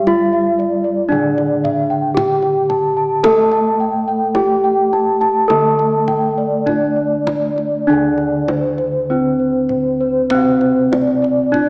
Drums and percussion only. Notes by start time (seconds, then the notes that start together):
0.07 kendang slap, kendang high
0.60 kendang slap
1.38 kendang slap
1.65 kendang low
2.17 kendang high, kendang low
2.42 kendang slap
2.70 kendang slap, kendang low
3.24 kendang high, kendang low
3.52 kendang slap
4.35 kendang slap, kendang high
4.93 kendang slap
5.21 kendang slap
5.50 kendang slap, kendang high
5.79 kendang slap
6.08 kendang slap, kendang low
6.67 kendang low
7.27 kendang slap, kendang high, kendang low
7.58 kendang slap
8.18 kendang slap
8.48 kendang high
8.78 kendang slap
9.69 kendang low
10.30 kendang low
10.61 kendang slap
10.93 kendang high
11.24 kendang slap
11.54 kendang low